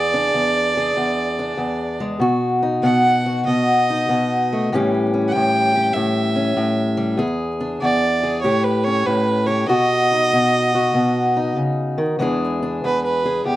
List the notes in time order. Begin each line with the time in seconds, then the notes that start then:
Already playing: E2 G#4 D5
0.14 D4
0.34 E2
0.77 G#4
0.97 E2
1.39 D4
1.57 E2
2.00 G#3
2.20 B2 F#4
2.62 D#4
2.83 B2 F#5
3.26 F#4
3.46 B2 D#5
3.90 D#4
4.09 B2
4.53 A3
4.72 A2 E3 G3 C#4 G4
5.14 C#4
5.28 F#5
5.32 A2 G5
5.76 G4
5.93 A2 E5
6.36 C#4
6.57 A2
6.97 G3
7.17 E2 G#4
7.61 D4
7.82 E2 D5
8.23 G#4
8.42 A2 G4 C#5
8.64 B4
8.84 C#4 C#5
9.06 A2 B4
9.46 G4 C#5
9.67 B2 F#4 D#5
10.11 D#4
10.33 B2
10.75 F#4
10.94 B2
11.37 D#4
11.56 C#3
11.98 D#3
12.19 E2 E3 G#3 D4 G#4
12.63 D4
12.84 E2 B4
13.04 B4
13.25 G#4
13.45 E2 G4